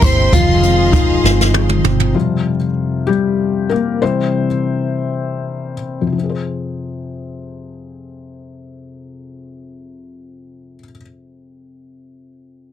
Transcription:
Already playing: C3 E3 A#3 E4 G4 A#4 E5 G5 C6
0.02 G1 C4 E4 C5, kick, closed hi-hat
0.32 F1 D#3 F3 F4 G#4 D#5 F5, kick, closed hi-hat
0.63 G#3 C4, closed hi-hat
0.92 D#3 F3 D#4, kick, closed hi-hat
1.23 G1 G#3 C4, snare
1.41 snare
1.54 F3 G#4, high tom
1.69 mid tom
1.84 G1 C4, mid tom
2.00 floor tom
2.14 F2 C3 F3 G3 F4
3.07 G3 G4
3.69 A#3 A#4
4.02 C3 E3 G3 C4 C5
6.01 F2
6.07 C3
6.12 F3
6.18 C4
6.23 G#4
6.29 C5

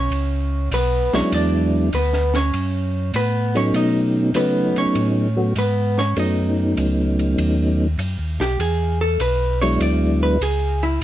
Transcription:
Already playing: C#4 C#5
0.10 C#2, ride
0.71 B1 B3 B4, hi-hat pedal, ride
1.13 B1 F#3 G#3 B3 C#4 D4 E4 C#5, snare, ride
1.32 E2 D4 D5, ride
1.93 D2 B3 B4, hi-hat pedal, ride
2.13 snare
2.34 C#4 C#5, snare, ride
2.53 F#2, ride
3.14 A2 B3 B4, hi-hat pedal, ride
3.55 F#3 A3 B3 C#4 D#4 C#5, ride
3.74 B2 D#4 D#5, ride
4.34 C#3 F#3 A3 B3 C#4 D#4 B4, hi-hat pedal, ride
4.76 C#3 C#4 C#5, ride
4.95 A2, ride
5.36 F#3 A3 B3 C#4 F#4
5.56 G#2 B3 B4, hi-hat pedal, ride
5.98 C#4 C#5, snare
6.16 F#2 F#3 A3 B3 C#4 D#4 D#5, ride
6.77 C#2, hi-hat pedal, ride
7.19 ride
7.38 D#2, ride
7.98 F#2, hi-hat pedal, ride
8.19 D#2
8.39 B1 G4, snare
8.59 E2 G#4, ride
9.01 A4
9.19 B1 B4, hi-hat pedal, ride
9.62 F#3 G#3 B3 D4 E4 C#5, ride
9.80 D2 D5, ride
10.23 B4
10.41 C#2 G#4, hi-hat pedal, ride
10.83 E4, ride

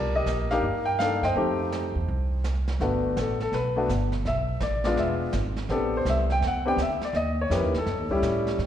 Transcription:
Already playing: C2 G4 A#4 D5
0.15 G4 A#4 D#5
0.26 A#1, snare, hi-hat pedal
0.51 A#3 D4 D#4 G4 A#4 F5, snare
0.62 G2, brush sweep
0.85 G5
0.99 A#3 D4 D#4 A4 F5, snare, hi-hat pedal
1.22 F#2 C5 D#5 G5, snare
1.35 F2 A3 C4 D#4 G4, brush sweep
1.72 snare, hi-hat pedal
1.95 E2
2.08 C2, brush sweep
2.44 snare, hi-hat pedal
2.68 snare
2.80 G1 A3 B3 D4 F#4 B4, brush sweep, snare
3.16 A1 A4, snare, hi-hat pedal
3.40 A4, snare
3.52 B1 B4, brush sweep, snare
3.76 A3 B3 D4 F#4
3.88 G1, snare, hi-hat pedal
4.12 snare
4.25 B1 E5, brush sweep, snare
4.60 A1 D5, snare, hi-hat pedal
4.84 G#3 B3 D4 F4 D5, snare
4.96 E1 E5, brush sweep, snare
5.33 G#1, snare, hi-hat pedal
5.56 snare
5.69 A1 B3 C4 D4 G4 A4, brush sweep, snare
5.97 C5
6.05 C2, snare, hi-hat pedal
6.09 E5
6.30 G5, snare
6.41 E2, brush sweep, snare
6.47 F#5
6.65 B3 C4 D4 G4 G5
6.77 D2, snare, hi-hat pedal
6.82 E5
7.00 muted upright bass stroke, snare
7.05 D5
7.13 D#2 D#5, brush sweep, snare
7.41 C#5
7.50 F2 A#3 C#4 E4 G4, snare, hi-hat pedal
7.55 B4
7.62 D#2
7.74 C#2 A4, snare
7.86 G2, brush sweep, snare
7.99 D#2
8.10 C#2 G3 C#4 E4 G4
8.22 A2, snare, hi-hat pedal
8.47 snare
8.59 G#2, brush sweep, snare

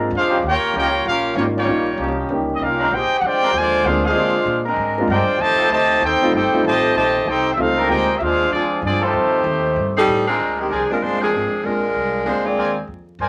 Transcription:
Already playing: G#2
0.11 F2 G#3 D4 F4
0.17 D4 G#4 C5 F5
0.29 F3 C#4 D#4 G4
0.43 D#2 A#3 C#4 G4
0.48 F4 A#4 C#5 G5
0.62 muted upright bass stroke
0.74 C#2 F3 A#3 C#4 D#4 G4
0.78 F4 A#4 C#5 G5
1.05 A#1 A#3 C#4 F4 G4 A#4 F5
1.35 G#1 G3 A#3 C#4 D#4 F4 G4 C#5
1.56 G3 A#3 C#4 F4 G4 C#5
1.66 A#1 G3 A#3 C#4 D#4 F4
1.97 C2 F3 C#4 D#4 G4
2.29 C#2 G3 A#3 C#4 D#4 G4
2.56 C2 D#5
2.63 A#3 C#4 F4 G4 A#4 F5
2.79 G#3 C4 D4 A#4
2.91 A#1 G4
2.95 D#4 G#4 C5 G5
3.09 muted upright bass stroke
3.20 F2 G#3 D4 G4 F#5
3.26 F4 C5 D5 G5
3.42 G#3 C4 D4 A#4
3.52 D#2 D3 F3 G#3
3.58 F4 C5 D5 G#5
3.83 D2 G#3 A#3 C4 D4 F4 G#4 C5 F5
4.04 G#3 C4 D4 F4 G#4 C5 F5
4.14 D3 G#3 A#3 C4 D4 F4
4.45 A#2
4.65 G#3 C4 D4 A#4
4.76 G#2
4.98 G#3 A#3 C4 D4 F4
5.08 G2 G#3 C4 D4 F4 G4 A#4 D5 G5
5.12 C5
5.28 muted upright bass stroke
5.39 F2 C3 D#3 A3 G4 C5 D#5 A5
5.57 G3 D#4 F4 A4, muted upright bass stroke
5.69 D2 C3 A3 D#4 G4 C5 D#5 A5
6.01 D#2 C4 D#4 G4 A4
6.05 C5 G5
6.21 G3 A3 C4 D#4 F4, muted upright bass stroke
6.31 G1 C4 D#4 G4 A4
6.36 D#4 C5 G5
6.51 G3 A3 C4 D#4 F4, muted upright bass stroke
6.64 A1 C3 D#3 A3 G4 C5 A5
6.68 D#5
6.95 A#1 C3 D#3 A3 G4 C5 D#5 A5
7.26 C2 C4 D#4 G4 A4 C5 G5
7.54 C#2 G3 A3 C4 F4 E5
7.58 A3 C4 D#4 F4 A4 F5
7.62 C5
7.77 C4 D4 A#4
7.87 D2 G#3 A#3 C4 D4 D#4 F4 G4 G#4 G5
7.92 C5
8.18 D#2 G#3 D4 F4 E5
8.23 D4 G#4 C5 F5
8.50 F2 F3 G#3 D4 F4 D5
8.54 C4 G#4
8.82 G2 F3 G#3 D4
8.86 C4 F4 G#4 D5
9.01 D#3 G3 A3 C4 D#4 F4 G4 A4 C5
9.13 F2
9.44 D#2
9.76 G2
9.97 G3 C4 D#4 A4
10.07 A2
10.26 G#3 C4 D4 F4 A#4
10.39 D2
10.59 D#3 G#3 C4 G4
10.70 C2 F3 C4 D4 G#4 A#4 C5 D5 G#5
10.89 G#3 A#3 C4 D4 F4 A#4, muted upright bass stroke
11.01 G1 G#3 D4 F4 C5
11.20 F3 C4 D4 G#4 A#4 C5 D5 G#5
11.32 G#1 G#3 A#3 C4 D4 F4
11.52 muted upright bass stroke
11.64 A#1 G#3 A#3 C4 D4 F4 A#4
11.95 C2
12.25 D2 G#3 A#3 C4 D4 F4 G#4 C5
12.45 C4 F4 G#4 D5
12.56 D#2 A#4 C5 D5 G#5
12.87 F2
13.19 G2 A#4 C5 D5 G#5

